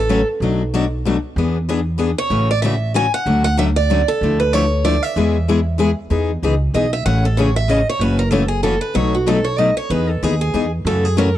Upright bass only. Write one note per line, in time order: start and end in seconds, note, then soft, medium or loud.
0.00 0.22 A1 medium
0.40 1.17 B1 medium
1.36 2.12 E2 medium
2.30 3.07 A1 medium
3.26 4.02 D2 medium
4.21 4.97 D2 medium
5.16 5.92 E2 medium
6.10 6.36 E2 medium
6.42 6.69 C#2 medium
6.74 7.01 B1 medium
7.06 7.82 A1 medium
7.99 8.76 F#1 medium
8.95 9.71 B1 medium
9.90 10.16 E2 medium
10.22 10.49 D#2 medium
10.54 10.81 E2 medium
10.85 11.38 F#2 medium